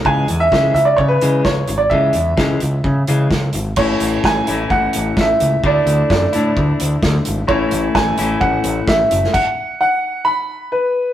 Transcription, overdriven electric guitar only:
\new Staff \with { instrumentName = "Overdriven electric guitar" } { \clef bass \time 4/4 \key a \major \tempo 4 = 129 <cis e gis>8 <cis e>8 <cis e gis>8 <cis e>8 <cis e>8 <cis e gis>8 <cis e>8 <cis e>8 | <cis e gis>8 <cis e>8 <cis e gis>8 <cis e>8 <cis e>8 <cis e gis>8 <cis e>8 <cis e>8 | <a, e a cis' e'>4. <a, e a cis' e'>2~ <a, e a cis' e'>8 | <d a d' e'>4. <d a d' e'>2~ <d a d' e'>8 |
<a, e a cis' e'>4. <a, e a cis' e'>2~ <a, e a cis' e'>8 | r1 | }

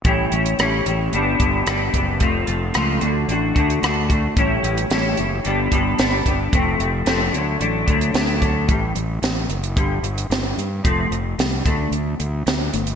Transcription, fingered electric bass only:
\new Staff \with { instrumentName = "Fingered electric bass" } { \clef bass \time 4/4 \key d \major \tempo 4 = 111 a,,8 a,,8 a,,8 a,,8 g,,8 g,,8 g,,8 fis,,8 | f,,8 f,,8 cis,8 d,8 a,,8 d,8 d,4 | a,,8 a,,8 a,,8 fis,,8 g,,8 g,,8 g,,8 g,,8 | f,,8 f,,8 f,,8 d,8 a,,8 d,8 d,4 |
a,,8 a,,8 a,,8 fis,,8 g,,8 g,,8 g,,8 g,8 | f,,8 f,,8 c,8 d,8 d,8 d,8 d,8 g,,8 | }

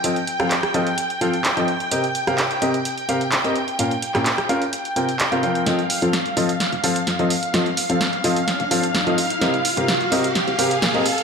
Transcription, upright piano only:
\new Staff \with { instrumentName = "Upright piano" } { \time 4/4 \key f \mixolydian \tempo 4 = 128 <f c' f' a' ees''>16 r8 <f c' f' a' f''>16 r8 <f c' f' a' ees''>16 r8. <f c' f' a' f''>16 r8 <f c' f' a' ees''>16 r8 | <c c' g' bes' ees''>16 r8 <c c' g' bes' f''>16 r8 <c c' g' bes' ees''>16 r8. <c c' g' bes' f''>16 r8 <c' g' bes' ees''>16 r8 | <bes, des' f' bes' f''>16 r8 <bes, des' f' bes' g''>16 r8 <des' f' bes' f''>16 r8. <c c' f' bes' g''>16 r8 <c c' f' bes' f''>16 <f c' f' bes' f''>16 r16 | <f c' f' a' ees''>16 r8 <f c' f' a' f''>16 r8 <f c' f' a' ees''>16 r8. <f c' f' a' f''>16 r8 <f c' f' a' ees''>16 r8 |
<f c' f' a' ees''>16 r8 <f c' f' a' f''>16 r8 <f c' f' a' ees''>16 r8. <f c' f' a' f''>16 r8 <f c' f' a' ees''>16 r8 | <c c' g' bes' ees''>16 r8 <c c' g' bes' f''>16 r8 <c c' g' bes' ees''>16 r8. <c c' g' bes' f''>16 r8 <c' g' bes' ees''>16 r8 | }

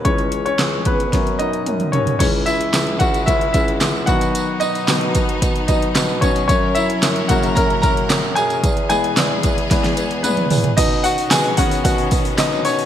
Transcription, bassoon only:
\new Staff \with { instrumentName = "Bassoon" } { \clef bass \time 4/4 \key b \major \tempo 4 = 112 cis,4 cis,8 cis,8 fis,8 fis,8 fis,8 dis,8 | cis,4 cis,8 cis,8 cis,8 cis,8 cis,8 b,8~ | b,8 r8 b,8 b,8 b,8 b,8 b,8 b,8 | fis,4 fis,8 fis,8 fis,8 fis,8 fis,8 fis,8 |
e,4 e,8 e,8 e,8 e,8 e,8 e,8 | b,4 b,8 r8 b,8 b,8 b,8 b,8 | }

